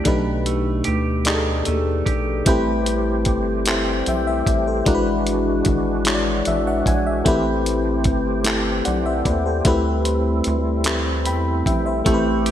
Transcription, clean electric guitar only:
Already playing: D3 A3 C4 G4
0.04 B2
0.46 A3
0.85 G4
1.26 D#4
1.66 A3
2.06 G4
12.06 A3
12.46 G4

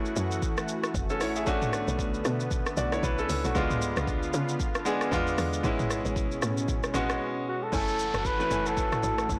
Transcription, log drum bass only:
Already playing: A1
0.16 F#2
0.94 F#1
1.21 A1
1.47 B1
1.88 B1
2.25 B2
2.77 B1
3.03 B1
3.29 C#2
3.45 B1
3.56 C#2
3.97 C#2
4.34 C#3
5.12 E2
5.38 E2
5.64 A1
6.05 A1
6.42 A2
6.95 A1
7.73 F#1
8.14 F#1
8.51 F#1
9.04 A1
9.29 F#1

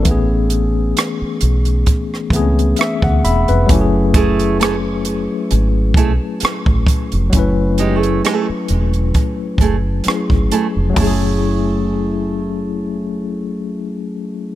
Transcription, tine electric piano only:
0.02 E3 A3
0.07 B3 C#4
0.11 G#4
2.32 E3 A3 B3 C4
2.36 G#4
2.42 C#4
2.79 E5
3.04 F#5
3.25 E5 B5
3.49 B4
3.66 F#3 A3
3.70 C#4 E4
3.75 G4
3.81 G#4
7.30 F#3 A3
7.34 C#4 E4
7.39 B4
10.05 F#3 A3 C#4 E4
10.09 G#4
10.89 F#3
10.94 A3
10.98 C#4
11.03 E4
11.07 G#4

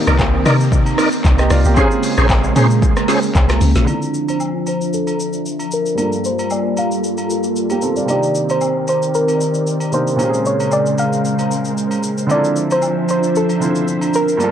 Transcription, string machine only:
Already playing: D#3 A#3 C4
1.77 C#3 G#3 A#3
3.88 F3 D4 C5 E5
5.98 G3 A#3 F4 A4
8.09 D#3 C4 A#4 D5
10.19 C#3 G#3 A#4 C5
12.30 F3 D4 C5 E5
14.41 G3 A#3 F4 A4

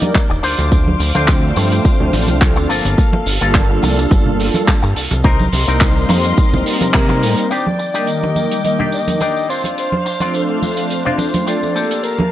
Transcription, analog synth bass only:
0.30 D#1
0.43 D2
0.58 D2
1.00 D2
1.15 D2
1.57 G2
2.00 D2
2.13 A1
2.28 C2
2.57 D2
2.70 G1
2.85 G1
3.26 G1
3.42 G1
3.83 C2
4.11 G1
4.83 G2
4.96 C2
5.11 C2
5.53 C2
5.68 C2
6.10 F2
6.53 C2
6.81 C3
6.94 C3
7.23 A2

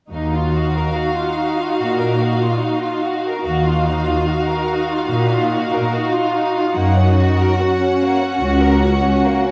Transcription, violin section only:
0.13 D#4 F5
0.34 F4
0.53 F#4
0.74 A#4
0.94 F#4
1.14 F4
1.36 D#4
1.56 F4
1.76 F#4
1.99 A#4
2.20 F#4
2.40 F4
2.61 D#4
2.81 F4
3.03 F#4
3.24 A#4
3.44 F#4 F5
3.65 F4
3.87 D#4
4.05 F4
4.27 F#4
4.49 A#4
4.68 F#4
4.88 F4
5.10 D#4
5.30 F4
5.52 F#4
5.72 A#4
5.93 F#4
6.12 F4
6.34 D#4
6.56 F4
6.76 A#3 F#5
6.96 C#4
7.17 F#4
7.38 A#4
7.58 F#4
7.79 C#4
8.01 A#3
8.20 C#4
8.41 F#4
8.61 A#4
8.82 F#4
9.02 C#4
9.23 A#3
9.43 C#4

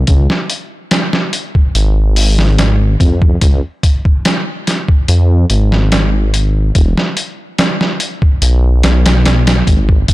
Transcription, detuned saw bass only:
0.08 C#2
1.75 G#1
3.00 F2
3.42 C#2
5.08 F2
5.50 G#1
6.75 E1
8.42 B1
9.67 G#1
10.09 E1

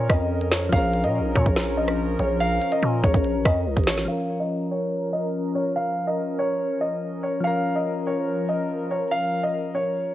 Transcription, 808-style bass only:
0.10 F2
0.73 A#1
1.04 A#2
1.20 A#1
1.36 A#2
1.46 A#1
2.19 A#1
2.82 A#2
3.03 A#1
3.14 A#1
3.35 A1
3.45 F2
3.66 C2
3.77 A1

